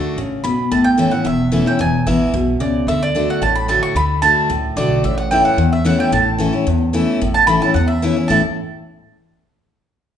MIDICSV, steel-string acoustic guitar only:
0, 0, Header, 1, 2, 480
1, 0, Start_track
1, 0, Tempo, 270514
1, 1278, Time_signature, 4, 2, 24, 8
1, 18046, End_track
2, 0, Start_track
2, 0, Title_t, "Steel-string acoustic guitar"
2, 0, Program_c, 0, 25
2, 0, Note_on_c, 0, 50, 84
2, 0, Note_on_c, 0, 57, 97
2, 0, Note_on_c, 0, 62, 96
2, 0, Note_on_c, 0, 66, 106
2, 295, Note_off_c, 0, 50, 0
2, 298, Note_off_c, 0, 57, 0
2, 303, Note_off_c, 0, 62, 0
2, 310, Note_off_c, 0, 66, 0
2, 316, Note_on_c, 0, 49, 87
2, 774, Note_off_c, 0, 49, 0
2, 787, Note_on_c, 0, 47, 98
2, 1249, Note_off_c, 0, 47, 0
2, 1268, Note_on_c, 0, 45, 100
2, 1731, Note_on_c, 0, 52, 83
2, 1740, Note_on_c, 0, 57, 94
2, 1755, Note_on_c, 0, 61, 97
2, 1757, Note_on_c, 0, 64, 110
2, 1972, Note_off_c, 0, 64, 0
2, 1982, Note_off_c, 0, 52, 0
2, 1986, Note_off_c, 0, 57, 0
2, 1993, Note_on_c, 0, 64, 73
2, 1994, Note_off_c, 0, 61, 0
2, 2023, Note_on_c, 0, 61, 50
2, 2185, Note_off_c, 0, 45, 0
2, 2211, Note_on_c, 0, 40, 96
2, 2221, Note_off_c, 0, 64, 0
2, 2236, Note_off_c, 0, 61, 0
2, 2691, Note_on_c, 0, 52, 94
2, 2702, Note_on_c, 0, 57, 92
2, 2715, Note_on_c, 0, 61, 83
2, 2717, Note_on_c, 0, 64, 94
2, 2927, Note_off_c, 0, 64, 0
2, 2941, Note_off_c, 0, 52, 0
2, 2946, Note_off_c, 0, 57, 0
2, 2949, Note_on_c, 0, 64, 62
2, 2953, Note_off_c, 0, 61, 0
2, 2974, Note_on_c, 0, 61, 46
2, 3135, Note_off_c, 0, 40, 0
2, 3175, Note_on_c, 0, 40, 101
2, 3178, Note_off_c, 0, 64, 0
2, 3191, Note_off_c, 0, 61, 0
2, 3666, Note_on_c, 0, 52, 98
2, 3674, Note_on_c, 0, 56, 94
2, 3684, Note_on_c, 0, 59, 94
2, 3695, Note_on_c, 0, 64, 99
2, 4097, Note_off_c, 0, 40, 0
2, 4126, Note_off_c, 0, 52, 0
2, 4130, Note_off_c, 0, 56, 0
2, 4135, Note_off_c, 0, 59, 0
2, 4140, Note_off_c, 0, 64, 0
2, 4145, Note_on_c, 0, 47, 97
2, 4605, Note_off_c, 0, 47, 0
2, 4617, Note_on_c, 0, 49, 85
2, 5080, Note_off_c, 0, 49, 0
2, 5119, Note_on_c, 0, 50, 92
2, 5563, Note_off_c, 0, 50, 0
2, 5584, Note_on_c, 0, 50, 81
2, 5599, Note_on_c, 0, 57, 82
2, 5602, Note_on_c, 0, 62, 93
2, 5611, Note_on_c, 0, 66, 96
2, 6043, Note_off_c, 0, 50, 0
2, 6051, Note_off_c, 0, 57, 0
2, 6052, Note_off_c, 0, 62, 0
2, 6057, Note_off_c, 0, 66, 0
2, 6064, Note_on_c, 0, 45, 101
2, 6535, Note_on_c, 0, 50, 85
2, 6544, Note_on_c, 0, 57, 93
2, 6556, Note_on_c, 0, 62, 101
2, 6562, Note_on_c, 0, 66, 88
2, 6979, Note_off_c, 0, 45, 0
2, 6998, Note_off_c, 0, 50, 0
2, 7003, Note_off_c, 0, 57, 0
2, 7009, Note_off_c, 0, 62, 0
2, 7012, Note_off_c, 0, 66, 0
2, 7021, Note_on_c, 0, 50, 87
2, 7469, Note_off_c, 0, 50, 0
2, 7490, Note_on_c, 0, 50, 88
2, 7500, Note_on_c, 0, 57, 92
2, 7507, Note_on_c, 0, 62, 96
2, 7523, Note_on_c, 0, 66, 99
2, 7956, Note_off_c, 0, 50, 0
2, 7961, Note_off_c, 0, 57, 0
2, 7964, Note_off_c, 0, 62, 0
2, 7972, Note_off_c, 0, 66, 0
2, 7977, Note_on_c, 0, 45, 102
2, 8456, Note_on_c, 0, 50, 95
2, 8464, Note_on_c, 0, 57, 87
2, 8476, Note_on_c, 0, 62, 97
2, 8483, Note_on_c, 0, 66, 100
2, 8895, Note_off_c, 0, 45, 0
2, 8918, Note_off_c, 0, 50, 0
2, 8923, Note_off_c, 0, 57, 0
2, 8928, Note_off_c, 0, 62, 0
2, 8932, Note_off_c, 0, 66, 0
2, 8941, Note_on_c, 0, 45, 90
2, 9425, Note_on_c, 0, 52, 84
2, 9436, Note_on_c, 0, 57, 89
2, 9443, Note_on_c, 0, 61, 95
2, 9455, Note_on_c, 0, 64, 99
2, 9858, Note_off_c, 0, 45, 0
2, 9883, Note_off_c, 0, 52, 0
2, 9888, Note_off_c, 0, 57, 0
2, 9892, Note_off_c, 0, 61, 0
2, 9898, Note_off_c, 0, 64, 0
2, 9902, Note_on_c, 0, 40, 96
2, 10374, Note_on_c, 0, 52, 85
2, 10386, Note_on_c, 0, 57, 101
2, 10396, Note_on_c, 0, 61, 108
2, 10402, Note_on_c, 0, 64, 110
2, 10818, Note_off_c, 0, 40, 0
2, 10837, Note_off_c, 0, 52, 0
2, 10843, Note_off_c, 0, 57, 0
2, 10849, Note_off_c, 0, 61, 0
2, 10852, Note_off_c, 0, 64, 0
2, 10867, Note_on_c, 0, 45, 96
2, 11329, Note_on_c, 0, 52, 86
2, 11347, Note_on_c, 0, 57, 87
2, 11352, Note_on_c, 0, 61, 100
2, 11362, Note_on_c, 0, 64, 102
2, 11559, Note_off_c, 0, 64, 0
2, 11577, Note_off_c, 0, 52, 0
2, 11581, Note_on_c, 0, 64, 64
2, 11586, Note_off_c, 0, 57, 0
2, 11588, Note_off_c, 0, 61, 0
2, 11606, Note_on_c, 0, 61, 56
2, 11781, Note_off_c, 0, 45, 0
2, 11811, Note_off_c, 0, 64, 0
2, 11824, Note_off_c, 0, 61, 0
2, 11828, Note_on_c, 0, 40, 90
2, 12299, Note_on_c, 0, 52, 85
2, 12307, Note_on_c, 0, 57, 104
2, 12318, Note_on_c, 0, 61, 94
2, 12322, Note_on_c, 0, 64, 98
2, 12743, Note_off_c, 0, 40, 0
2, 12761, Note_off_c, 0, 52, 0
2, 12765, Note_off_c, 0, 57, 0
2, 12770, Note_off_c, 0, 61, 0
2, 12772, Note_off_c, 0, 64, 0
2, 12801, Note_on_c, 0, 45, 95
2, 13261, Note_on_c, 0, 52, 94
2, 13272, Note_on_c, 0, 57, 92
2, 13279, Note_on_c, 0, 61, 88
2, 13290, Note_on_c, 0, 64, 106
2, 13504, Note_off_c, 0, 52, 0
2, 13505, Note_off_c, 0, 64, 0
2, 13509, Note_off_c, 0, 57, 0
2, 13513, Note_off_c, 0, 61, 0
2, 13526, Note_on_c, 0, 64, 62
2, 13552, Note_on_c, 0, 61, 54
2, 13710, Note_off_c, 0, 45, 0
2, 13745, Note_off_c, 0, 64, 0
2, 13758, Note_off_c, 0, 61, 0
2, 13770, Note_on_c, 0, 40, 93
2, 14236, Note_on_c, 0, 52, 87
2, 14245, Note_on_c, 0, 57, 93
2, 14257, Note_on_c, 0, 61, 91
2, 14267, Note_on_c, 0, 64, 104
2, 14462, Note_off_c, 0, 64, 0
2, 14473, Note_off_c, 0, 52, 0
2, 14477, Note_off_c, 0, 57, 0
2, 14483, Note_off_c, 0, 61, 0
2, 14484, Note_on_c, 0, 64, 59
2, 14510, Note_on_c, 0, 61, 45
2, 14676, Note_off_c, 0, 40, 0
2, 14705, Note_off_c, 0, 64, 0
2, 14710, Note_off_c, 0, 61, 0
2, 14710, Note_on_c, 0, 45, 93
2, 14726, Note_on_c, 0, 52, 80
2, 14727, Note_on_c, 0, 57, 88
2, 14731, Note_on_c, 0, 61, 93
2, 14735, Note_on_c, 0, 64, 101
2, 14910, Note_off_c, 0, 45, 0
2, 14919, Note_off_c, 0, 52, 0
2, 14919, Note_off_c, 0, 57, 0
2, 14921, Note_off_c, 0, 61, 0
2, 14923, Note_off_c, 0, 64, 0
2, 18046, End_track
0, 0, End_of_file